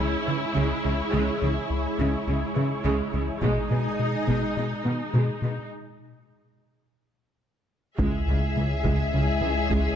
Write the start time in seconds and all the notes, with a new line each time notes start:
Already playing: G#3 E4 G#4 C#5
0.00 C#2
0.27 C#3 E3
0.55 C#2 C#3 G#3
0.84 C#2 C#3 G#3
1.13 C#2 C#3 G#3
1.41 C#2 C#3 G#3
1.70 C#2
1.99 C#2 C#3 G#3
2.27 C#2 C#3 G#3
2.56 C#3 E3
2.85 C#2 C#3 G#3
3.13 C#2 C#3 G#3
3.42 B2 G#3 D#4 G#4 D#5, taiko
3.71 B2 G#3
4.00 B2
4.27 B2 G#3, taiko
4.56 B2 G#3
4.85 B2 D#3 B3
5.14 B2 G#3
5.42 B2 G#3
7.99 C#2 G#3 C#4 E4 G#4 E5, taiko
8.28 C#2 C#3
8.56 C#2 C#3 E3
8.85 C#2 G#3, taiko
9.14 C#2 C#3
9.42 C#2 E3
9.70 C#2 G#3, taiko